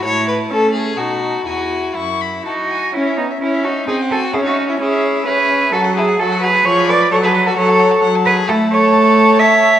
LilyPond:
<<
  \new Staff \with { instrumentName = "Violin" } { \time 3/4 \key e \major \tempo 4 = 129 a''2 a''4 | gis''4 cis'''8 b''8 a''8 gis''8 | \key cis \minor cis''16 e''16 cis''16 e''16 cis''16 e''16 cis''16 e''16 gis''16 fis''16 gis''16 fis''16 | cis''16 e''16 cis''16 e''16 cis''16 e''16 cis''16 e''16 cis''16 e''16 cis''16 e''16 |
a''16 fis''16 a''16 fis''16 a''16 fis''16 a''16 fis''16 cis'''16 b''16 cis'''16 b''16 | fis''16 a''16 fis''16 a''16 fis''16 a''16 fis''16 a''16 fis''16 a''16 fis''16 a''16 | \key a \lydian a''2. | }
  \new Staff \with { instrumentName = "Cello" } { \time 3/4 \key e \major a,4 a4 b,4 | e,4 fis,4 fis'4 | \key cis \minor e'8 dis'8 e'8 fis'8 gis'8 a'8 | gis'16 fis'8 e'16 gis'4 b'4 |
a'8 gis'8 a'8 b'8 cis''8 d''8 | cis''16 b'8 a'16 cis''4 r8 b'8 | \key a \lydian a'8 cis''4. e''4 | }
  \new Staff \with { instrumentName = "Violin" } { \time 3/4 \key e \major cis''8 b'8 a'8 gis'8 fis'4 | fis'4 e'4 dis'4 | \key cis \minor cis'8 b8 cis'8 dis'8 dis'8 fis'8 | e'16 dis'8 cis'16 e'4 gis'4 |
fis'8 e'8 fis'8 gis'8 gis'8 b'8 | a'16 gis'8 fis'16 a'4 r8 gis'8 | \key a \lydian e'8 a'4. cis''4 | }
  \new Staff \with { instrumentName = "Viola" } { \time 3/4 \key e \major e'4 cis'4 dis'8 dis'8 | e'2~ e'8 r8 | \key cis \minor cis'4 cis'4 bis4 | cis'4 cis'4 cis'4 |
fis4 fis4 eis4 | fis4 fis4 fis4 | \key a \lydian a2. | }
>>